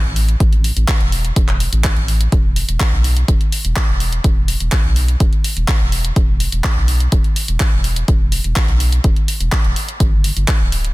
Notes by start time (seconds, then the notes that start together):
0.05 A1
0.16 open hi-hat
0.29 closed hi-hat
0.40 A1, kick, closed hi-hat
0.53 closed hi-hat
0.64 open hi-hat
0.77 A1, closed hi-hat
0.88 kick, clap, closed hi-hat
1.01 E1, closed hi-hat
1.12 open hi-hat
1.25 closed hi-hat
1.36 E1, kick, closed hi-hat
1.48 clap, closed hi-hat
1.60 open hi-hat
1.73 A1, closed hi-hat
1.84 kick, clap, closed hi-hat
1.97 A1, closed hi-hat
2.08 open hi-hat
2.21 closed hi-hat
2.32 E1, kick, closed hi-hat
2.56 open hi-hat
2.69 E1, closed hi-hat
2.80 kick, clap, closed hi-hat
2.93 B1
3.04 open hi-hat
3.17 closed hi-hat
3.28 E1, kick, closed hi-hat
3.41 closed hi-hat
3.52 open hi-hat
3.65 E1, closed hi-hat
3.76 kick, clap, closed hi-hat
3.89 E1
4.00 open hi-hat
4.12 closed hi-hat
4.24 E1, kick, closed hi-hat
4.48 open hi-hat
4.60 E1, closed hi-hat
4.72 kick, clap, closed hi-hat
4.85 B1
4.96 open hi-hat
5.08 closed hi-hat
5.20 E1, kick, closed hi-hat
5.33 closed hi-hat
5.44 open hi-hat
5.57 E1, closed hi-hat
5.68 kick, clap, closed hi-hat
5.81 E1
5.92 open hi-hat
6.05 closed hi-hat
6.16 E1, kick, closed hi-hat
6.40 open hi-hat
6.52 E1, closed hi-hat
6.64 kick, clap, closed hi-hat
6.77 B1
6.88 open hi-hat
7.00 closed hi-hat
7.12 E1, kick, closed hi-hat
7.24 closed hi-hat
7.36 open hi-hat
7.48 E1, closed hi-hat
7.60 kick, clap, closed hi-hat
7.73 E1
7.84 open hi-hat
7.96 closed hi-hat
8.08 E1, kick, closed hi-hat
8.32 open hi-hat
8.44 E1, closed hi-hat
8.56 kick, clap, closed hi-hat
8.68 B1, closed hi-hat
8.80 open hi-hat
8.92 closed hi-hat
9.04 E1, kick, closed hi-hat
9.16 closed hi-hat
9.28 open hi-hat
9.40 E1, closed hi-hat
9.52 kick, clap, closed hi-hat
9.64 E1, closed hi-hat
9.76 open hi-hat
9.89 closed hi-hat
10.00 G1, kick, closed hi-hat
10.24 open hi-hat
10.37 G1, closed hi-hat
10.48 kick, clap, closed hi-hat
10.60 D1
10.72 open hi-hat
10.85 closed hi-hat